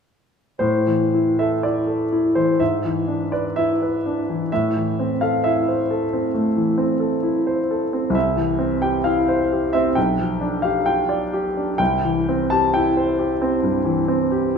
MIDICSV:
0, 0, Header, 1, 2, 480
1, 0, Start_track
1, 0, Key_signature, 0, "minor"
1, 0, Tempo, 1025641
1, 288, Time_signature, 4, 2, 24, 8
1, 764, Tempo, 956938
1, 2204, Tempo, 910470
1, 5564, Tempo, 923077
1, 7489, End_track
2, 0, Start_track
2, 0, Title_t, "Grand piano"
2, 0, Program_c, 0, 0
2, 277, Note_on_c, 0, 72, 53
2, 282, Note_on_c, 0, 45, 48
2, 395, Control_c, 0, 64, 127
2, 406, Note_on_c, 0, 52, 34
2, 532, Note_on_c, 0, 64, 33
2, 600, Note_off_c, 0, 52, 0
2, 643, Note_off_c, 0, 72, 0
2, 651, Note_on_c, 0, 76, 56
2, 654, Note_on_c, 0, 69, 36
2, 720, Note_off_c, 0, 64, 0
2, 764, Note_on_c, 0, 74, 48
2, 766, Note_off_c, 0, 76, 0
2, 772, Note_on_c, 0, 64, 35
2, 841, Note_off_c, 0, 69, 0
2, 883, Note_on_c, 0, 69, 32
2, 964, Note_off_c, 0, 64, 0
2, 1009, Note_on_c, 0, 64, 37
2, 1079, Note_off_c, 0, 69, 0
2, 1125, Note_on_c, 0, 72, 57
2, 1128, Note_on_c, 0, 52, 37
2, 1129, Note_off_c, 0, 74, 0
2, 1202, Note_off_c, 0, 64, 0
2, 1227, Note_off_c, 0, 45, 0
2, 1248, Note_off_c, 0, 72, 0
2, 1248, Note_on_c, 0, 76, 58
2, 1249, Note_off_c, 0, 52, 0
2, 1252, Note_on_c, 0, 44, 43
2, 1258, Control_c, 0, 64, 0
2, 1352, Control_c, 0, 64, 127
2, 1373, Note_on_c, 0, 52, 36
2, 1488, Note_on_c, 0, 62, 32
2, 1563, Note_off_c, 0, 52, 0
2, 1609, Note_off_c, 0, 76, 0
2, 1611, Note_on_c, 0, 74, 47
2, 1616, Note_on_c, 0, 71, 39
2, 1681, Note_off_c, 0, 62, 0
2, 1730, Note_off_c, 0, 74, 0
2, 1731, Note_on_c, 0, 76, 63
2, 1741, Note_on_c, 0, 64, 40
2, 1805, Note_off_c, 0, 71, 0
2, 1863, Note_on_c, 0, 71, 37
2, 1926, Note_off_c, 0, 64, 0
2, 1981, Note_on_c, 0, 62, 41
2, 2046, Note_off_c, 0, 71, 0
2, 2100, Note_on_c, 0, 52, 35
2, 2163, Note_off_c, 0, 62, 0
2, 2185, Note_off_c, 0, 44, 0
2, 2204, Note_off_c, 0, 76, 0
2, 2210, Note_off_c, 0, 52, 0
2, 2213, Control_c, 0, 64, 0
2, 2214, Note_on_c, 0, 76, 64
2, 2220, Note_on_c, 0, 45, 45
2, 2299, Control_c, 0, 64, 127
2, 2340, Note_on_c, 0, 52, 34
2, 2463, Note_on_c, 0, 60, 39
2, 2526, Note_off_c, 0, 52, 0
2, 2573, Note_off_c, 0, 76, 0
2, 2577, Note_on_c, 0, 77, 60
2, 2584, Note_on_c, 0, 69, 37
2, 2649, Note_off_c, 0, 60, 0
2, 2694, Note_off_c, 0, 77, 0
2, 2697, Note_on_c, 0, 76, 60
2, 2706, Note_on_c, 0, 64, 36
2, 2771, Note_off_c, 0, 69, 0
2, 2826, Note_on_c, 0, 72, 36
2, 2893, Note_off_c, 0, 64, 0
2, 2944, Note_on_c, 0, 69, 38
2, 3012, Note_off_c, 0, 72, 0
2, 3064, Note_on_c, 0, 60, 35
2, 3129, Note_off_c, 0, 69, 0
2, 3158, Note_off_c, 0, 45, 0
2, 3175, Note_on_c, 0, 57, 37
2, 3247, Note_off_c, 0, 60, 0
2, 3293, Note_on_c, 0, 52, 35
2, 3362, Note_off_c, 0, 57, 0
2, 3403, Note_on_c, 0, 60, 39
2, 3480, Note_off_c, 0, 52, 0
2, 3521, Note_on_c, 0, 69, 35
2, 3596, Note_off_c, 0, 60, 0
2, 3640, Note_on_c, 0, 64, 37
2, 3716, Note_off_c, 0, 69, 0
2, 3767, Note_on_c, 0, 72, 41
2, 3836, Note_off_c, 0, 64, 0
2, 3893, Note_on_c, 0, 69, 41
2, 3960, Note_off_c, 0, 72, 0
2, 4011, Note_on_c, 0, 60, 37
2, 4083, Note_off_c, 0, 69, 0
2, 4100, Note_on_c, 0, 36, 50
2, 4118, Note_off_c, 0, 76, 0
2, 4126, Note_on_c, 0, 76, 63
2, 4129, Note_off_c, 0, 60, 0
2, 4135, Control_c, 0, 64, 0
2, 4233, Control_c, 0, 64, 127
2, 4239, Note_on_c, 0, 52, 35
2, 4356, Note_on_c, 0, 60, 38
2, 4434, Note_off_c, 0, 52, 0
2, 4479, Note_on_c, 0, 79, 61
2, 4485, Note_off_c, 0, 76, 0
2, 4486, Note_on_c, 0, 67, 37
2, 4552, Note_off_c, 0, 60, 0
2, 4596, Note_on_c, 0, 77, 61
2, 4601, Note_off_c, 0, 79, 0
2, 4602, Note_on_c, 0, 64, 43
2, 4676, Note_off_c, 0, 67, 0
2, 4725, Note_on_c, 0, 72, 45
2, 4793, Note_off_c, 0, 64, 0
2, 4853, Note_on_c, 0, 67, 36
2, 4914, Note_off_c, 0, 72, 0
2, 4957, Note_off_c, 0, 77, 0
2, 4959, Note_on_c, 0, 76, 71
2, 4967, Note_on_c, 0, 60, 44
2, 5039, Note_off_c, 0, 67, 0
2, 5047, Note_off_c, 0, 36, 0
2, 5077, Note_on_c, 0, 79, 66
2, 5081, Note_off_c, 0, 76, 0
2, 5081, Note_on_c, 0, 35, 49
2, 5085, Note_off_c, 0, 60, 0
2, 5091, Control_c, 0, 64, 0
2, 5180, Control_c, 0, 64, 127
2, 5205, Note_on_c, 0, 53, 35
2, 5318, Note_on_c, 0, 62, 42
2, 5396, Note_off_c, 0, 53, 0
2, 5430, Note_on_c, 0, 77, 61
2, 5441, Note_off_c, 0, 79, 0
2, 5442, Note_on_c, 0, 67, 42
2, 5512, Note_off_c, 0, 62, 0
2, 5554, Note_on_c, 0, 79, 70
2, 5555, Note_on_c, 0, 65, 41
2, 5556, Note_off_c, 0, 77, 0
2, 5632, Note_off_c, 0, 67, 0
2, 5675, Note_on_c, 0, 74, 45
2, 5749, Note_off_c, 0, 65, 0
2, 5802, Note_on_c, 0, 67, 48
2, 5871, Note_off_c, 0, 74, 0
2, 5926, Note_on_c, 0, 62, 39
2, 5996, Note_off_c, 0, 67, 0
2, 6023, Note_off_c, 0, 35, 0
2, 6027, Note_off_c, 0, 79, 0
2, 6035, Note_on_c, 0, 79, 79
2, 6040, Note_on_c, 0, 36, 52
2, 6046, Note_off_c, 0, 62, 0
2, 6052, Control_c, 0, 64, 0
2, 6125, Control_c, 0, 64, 127
2, 6169, Note_on_c, 0, 52, 42
2, 6297, Note_on_c, 0, 60, 41
2, 6360, Note_off_c, 0, 52, 0
2, 6402, Note_off_c, 0, 79, 0
2, 6409, Note_on_c, 0, 81, 79
2, 6419, Note_on_c, 0, 67, 45
2, 6483, Note_off_c, 0, 60, 0
2, 6527, Note_off_c, 0, 81, 0
2, 6531, Note_on_c, 0, 79, 72
2, 6539, Note_on_c, 0, 64, 44
2, 6603, Note_off_c, 0, 67, 0
2, 6652, Note_on_c, 0, 72, 48
2, 6721, Note_off_c, 0, 64, 0
2, 6768, Note_on_c, 0, 67, 44
2, 6834, Note_off_c, 0, 72, 0
2, 6885, Note_on_c, 0, 60, 45
2, 6951, Note_off_c, 0, 67, 0
2, 6971, Note_off_c, 0, 36, 0
2, 6996, Note_on_c, 0, 43, 43
2, 7068, Note_off_c, 0, 60, 0
2, 7110, Note_on_c, 0, 52, 45
2, 7186, Note_off_c, 0, 43, 0
2, 7231, Note_on_c, 0, 60, 45
2, 7306, Note_off_c, 0, 52, 0
2, 7353, Note_on_c, 0, 67, 44
2, 7430, Note_off_c, 0, 60, 0
2, 7489, Note_off_c, 0, 67, 0
2, 7489, Note_off_c, 0, 79, 0
2, 7489, End_track
0, 0, End_of_file